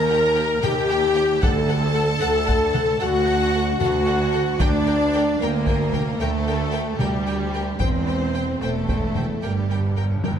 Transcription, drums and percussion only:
0.64 taiko mid
1.43 taiko
2.49 taiko
2.75 taiko mid
3.81 taiko mid
4.60 taiko
5.67 taiko
5.93 taiko mid
6.99 taiko mid
7.80 taiko
8.07 taiko rim
8.61 taiko rim
8.88 taiko
9.15 taiko mid
10.24 taiko high

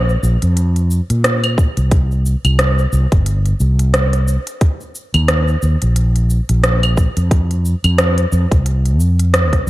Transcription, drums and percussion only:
0.09 cabasa
0.23 cabasa
0.42 closed hi-hat, cabasa
0.57 closed hi-hat, cabasa
0.76 closed hi-hat, cabasa
0.91 cabasa
1.10 closed hi-hat, cabasa
1.24 cross-stick, closed hi-hat, cabasa
1.44 closed hi-hat, cabasa, claves
1.58 kick, cabasa
1.77 closed hi-hat, cabasa
1.91 kick, closed hi-hat, cabasa
2.11 cabasa
2.26 cabasa
2.45 closed hi-hat, cabasa, claves
2.59 cross-stick, closed hi-hat, cabasa
2.79 cabasa
2.93 cabasa
3.12 kick, closed hi-hat, cabasa
3.26 closed hi-hat, cabasa
3.46 closed hi-hat, cabasa
3.60 cabasa
3.79 closed hi-hat, cabasa
3.94 cross-stick, closed hi-hat, cabasa
4.13 cross-stick, closed hi-hat, cabasa
4.28 cabasa
4.47 closed hi-hat, cabasa
4.61 kick, closed hi-hat, cabasa
4.81 cabasa
4.95 cabasa
5.14 closed hi-hat, cabasa, claves
5.28 cross-stick, closed hi-hat, cabasa
5.48 cabasa
5.62 cabasa
5.82 closed hi-hat, cabasa
5.96 closed hi-hat, cabasa
6.16 closed hi-hat, cabasa
6.30 cabasa
6.49 closed hi-hat, cabasa
6.64 cross-stick, closed hi-hat, cabasa
6.83 closed hi-hat, cabasa, claves
6.97 kick, cabasa
7.17 closed hi-hat, cabasa
7.31 kick, closed hi-hat, cabasa
7.51 closed hi-hat, cabasa
7.65 cabasa
7.84 closed hi-hat, cabasa, claves
7.98 cross-stick, closed hi-hat, cabasa
8.18 closed hi-hat, cabasa
8.32 cabasa
8.52 kick, closed hi-hat, cabasa
8.66 closed hi-hat, cabasa
8.86 closed hi-hat, cabasa
9.00 cabasa
9.19 closed hi-hat, cabasa
9.34 cross-stick, closed hi-hat, cabasa
9.53 kick, cross-stick, closed hi-hat, cabasa

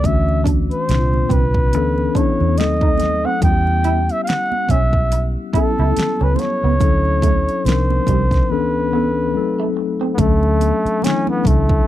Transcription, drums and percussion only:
0.04 kick, closed hi-hat, muted conga, low conga
0.29 muted conga
0.46 kick, closed hi-hat, high conga
0.71 closed hi-hat
0.89 snare, closed hi-hat
1.14 muted conga, high conga
1.29 kick, closed hi-hat, low conga
1.54 kick
1.73 closed hi-hat, muted conga
1.98 muted conga
2.15 kick, closed hi-hat
2.40 high conga
2.58 snare, closed hi-hat, muted conga, high conga
2.81 kick, muted conga
2.98 closed hi-hat, high conga, low conga
3.02 snare
3.42 kick, closed hi-hat, muted conga, low conga
3.67 muted conga
3.84 closed hi-hat, high conga
4.09 closed hi-hat
4.27 snare, closed hi-hat, muted conga
4.52 muted conga, high conga
4.69 kick, closed hi-hat, low conga
4.93 kick
5.12 closed hi-hat
5.53 kick, closed hi-hat
5.79 high conga
5.97 snare, closed hi-hat, muted conga, high conga
6.21 muted conga
6.36 closed hi-hat, high conga, low conga
6.42 snare
6.80 kick, closed hi-hat, muted conga, low conga
7.05 muted conga
7.22 kick, closed hi-hat, high conga
7.49 closed hi-hat
7.65 snare, closed hi-hat, muted conga, high conga
7.90 muted conga, high conga
8.06 kick, closed hi-hat, low conga
8.31 kick, snare, closed hi-hat
10.18 kick, closed hi-hat, muted conga, low conga
10.43 muted conga
10.60 closed hi-hat, high conga
10.86 closed hi-hat
11.02 closed hi-hat, muted conga, high conga
11.07 snare
11.27 muted conga, high conga
11.44 kick, closed hi-hat, low conga
11.69 kick

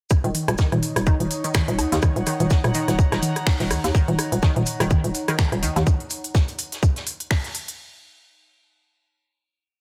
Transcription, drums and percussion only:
0.10 kick, cross-stick, shaker
0.24 closed hi-hat
0.35 open hi-hat, high tom, shaker
0.48 cross-stick, closed hi-hat, high woodblock
0.58 kick, snare, shaker
0.72 cross-stick, closed hi-hat, mid tom, high tom
0.83 open hi-hat, shaker
0.96 cross-stick, closed hi-hat
1.06 kick, shaker
1.20 closed hi-hat, high tom
1.31 open hi-hat, shaker
1.44 closed hi-hat
1.54 finger snap, kick, cross-stick, snare, high tom, shaker
1.68 closed hi-hat
1.79 cross-stick, open hi-hat, high woodblock, shaker
1.92 snare, closed hi-hat
2.02 kick, cross-stick, high tom, shaker
2.16 closed hi-hat
2.26 cross-stick, open hi-hat, shaker
2.40 closed hi-hat, high tom
2.50 kick, snare, shaker
2.64 cross-stick, closed hi-hat, mid tom
2.74 open hi-hat, shaker
2.88 cross-stick, snare, closed hi-hat, high tom
2.99 kick, shaker
3.12 cross-stick, snare, closed hi-hat, high woodblock
3.22 open hi-hat, high tom, shaker
3.36 cross-stick, closed hi-hat
3.46 finger snap, kick, snare, open hi-hat
3.60 snare, closed hi-hat
3.71 cross-stick, open hi-hat, high tom, shaker
3.84 snare, closed hi-hat
3.95 kick, cross-stick, shaker
4.08 closed hi-hat, high tom
4.19 cross-stick, open hi-hat, shaker
4.32 closed hi-hat
4.42 kick, cross-stick, snare, high woodblock, shaker
4.56 closed hi-hat, mid tom, high tom
4.66 open hi-hat, shaker
4.80 cross-stick, closed hi-hat
4.90 kick, high tom, shaker
5.04 closed hi-hat
5.15 open hi-hat, shaker
5.28 cross-stick, closed hi-hat
5.38 finger snap, kick, snare, high tom, shaker
5.52 cross-stick, closed hi-hat
5.63 open hi-hat, shaker
5.76 snare, closed hi-hat, high tom, high woodblock
5.87 kick, shaker
6.00 closed hi-hat
6.10 open hi-hat, shaker
6.24 closed hi-hat
6.35 kick, snare, shaker
6.48 closed hi-hat
6.59 open hi-hat, shaker
6.72 snare, closed hi-hat
6.83 kick, shaker
6.96 snare, closed hi-hat
7.07 open hi-hat, shaker
7.20 closed hi-hat
7.30 finger snap, kick, snare, open hi-hat
7.44 snare, closed hi-hat
7.55 open hi-hat, shaker
7.68 closed hi-hat

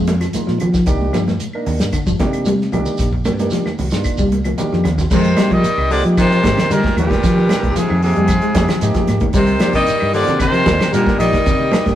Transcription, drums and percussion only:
0.07 snare, closed hi-hat, high conga
0.21 snare, closed hi-hat, claves, shekere
0.33 closed hi-hat, high conga, shekere
0.48 snare
0.60 closed hi-hat, low conga, claves, shekere
0.74 kick, snare, shekere
0.86 kick, closed hi-hat, shekere
1.01 high conga
1.13 snare, closed hi-hat, high conga, claves, shekere
1.28 snare, high conga, shekere
1.40 closed hi-hat, shekere
1.53 claves
1.66 open hi-hat, low conga, shekere
1.79 snare, closed hi-hat, shekere
1.92 kick, closed hi-hat, claves, shekere
2.06 kick, shekere
2.19 kick, snare, closed hi-hat, high conga
2.33 closed hi-hat, claves, shekere
2.45 closed hi-hat, high conga, shekere
2.62 snare
2.72 closed hi-hat, high conga, low conga, claves, shekere
2.86 shekere
2.97 kick, snare, closed hi-hat, shekere
3.13 kick
3.25 closed hi-hat, high conga, claves, shekere
3.39 snare, closed hi-hat, high conga, shekere
3.50 snare, closed hi-hat, shekere
3.66 snare, high conga, claves
3.78 open hi-hat, low conga, shekere
3.91 snare, closed hi-hat, shekere
4.04 kick, closed hi-hat, claves, shekere
4.17 kick, shekere
4.32 closed hi-hat, high conga
4.44 closed hi-hat, high conga, claves, shekere
4.58 closed hi-hat, low conga, shekere
4.73 snare, low conga
4.84 snare, closed hi-hat, low conga, claves, shekere
4.98 kick, snare, low conga, shekere
5.11 kick, snare, crash, low conga, shekere
5.25 closed hi-hat
5.37 snare, closed hi-hat, high conga, claves, shekere
5.51 kick, closed hi-hat
5.64 closed hi-hat, shekere
5.78 claves
5.91 open hi-hat, shekere
6.05 closed hi-hat
6.17 kick, closed hi-hat, claves, shekere
6.32 closed hi-hat
6.44 kick, snare, closed hi-hat, high conga, shekere
6.57 snare, closed hi-hat, low conga, claves
6.71 closed hi-hat, shekere
6.83 kick, snare, high conga
6.97 closed hi-hat, high conga, claves, shekere
7.10 kick, snare, closed hi-hat, high conga
7.23 kick, snare, closed hi-hat, low conga, shekere
7.49 snare, closed hi-hat, high conga, claves, shekere
7.63 kick, closed hi-hat
7.76 closed hi-hat, shekere
7.90 claves
8.02 open hi-hat, shekere
8.16 closed hi-hat
8.28 kick, closed hi-hat, claves, shekere
8.42 closed hi-hat
8.55 kick, snare, closed hi-hat, high conga, shekere
8.68 snare, closed hi-hat, low conga, claves
8.81 closed hi-hat, shekere
8.94 kick, snare, closed hi-hat, high conga
9.07 snare, closed hi-hat, high conga, claves, shekere
9.20 kick, closed hi-hat, high conga
9.33 kick, closed hi-hat, low conga, shekere
9.47 closed hi-hat
9.60 snare, closed hi-hat, high conga, claves, shekere
9.73 kick, snare, closed hi-hat
9.87 closed hi-hat, shekere
10.00 claves
10.13 open hi-hat, shekere
10.27 snare, closed hi-hat, low conga
10.39 kick, snare, closed hi-hat, claves, shekere
10.53 closed hi-hat
10.66 kick, snare, closed hi-hat, high conga, shekere
10.80 snare, closed hi-hat, low conga, claves
10.93 closed hi-hat, shekere
11.06 kick, snare, high conga
11.19 closed hi-hat, claves, shekere
11.33 kick, snare, closed hi-hat, high conga
11.46 kick, closed hi-hat, low conga, shekere
11.72 snare, closed hi-hat, high conga, claves, shekere
11.86 kick, snare, closed hi-hat, high conga

